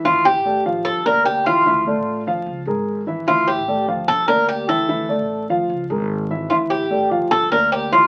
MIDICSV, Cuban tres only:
0, 0, Header, 1, 2, 480
1, 0, Start_track
1, 0, Key_signature, -1, "minor"
1, 0, Tempo, 403769
1, 59, Time_signature, 4, 2, 24, 8
1, 9594, End_track
2, 0, Start_track
2, 0, Title_t, "Cuban tres"
2, 0, Program_c, 0, 25
2, 61, Note_on_c, 0, 65, 82
2, 300, Note_on_c, 0, 67, 88
2, 306, Note_off_c, 0, 65, 0
2, 744, Note_off_c, 0, 67, 0
2, 1009, Note_on_c, 0, 69, 102
2, 1254, Note_off_c, 0, 69, 0
2, 1259, Note_on_c, 0, 70, 91
2, 1488, Note_off_c, 0, 70, 0
2, 1492, Note_on_c, 0, 67, 92
2, 1739, Note_on_c, 0, 65, 80
2, 1740, Note_off_c, 0, 67, 0
2, 2647, Note_off_c, 0, 65, 0
2, 3895, Note_on_c, 0, 65, 81
2, 4132, Note_on_c, 0, 67, 85
2, 4141, Note_off_c, 0, 65, 0
2, 4578, Note_off_c, 0, 67, 0
2, 4852, Note_on_c, 0, 69, 110
2, 5075, Note_off_c, 0, 69, 0
2, 5087, Note_on_c, 0, 70, 94
2, 5328, Note_off_c, 0, 70, 0
2, 5332, Note_on_c, 0, 67, 93
2, 5568, Note_off_c, 0, 67, 0
2, 5572, Note_on_c, 0, 69, 94
2, 6485, Note_off_c, 0, 69, 0
2, 7726, Note_on_c, 0, 65, 73
2, 7792, Note_off_c, 0, 65, 0
2, 7967, Note_on_c, 0, 67, 81
2, 8417, Note_off_c, 0, 67, 0
2, 8691, Note_on_c, 0, 69, 109
2, 8916, Note_off_c, 0, 69, 0
2, 8937, Note_on_c, 0, 70, 98
2, 9160, Note_off_c, 0, 70, 0
2, 9178, Note_on_c, 0, 67, 91
2, 9401, Note_off_c, 0, 67, 0
2, 9421, Note_on_c, 0, 65, 81
2, 9594, Note_off_c, 0, 65, 0
2, 9594, End_track
0, 0, End_of_file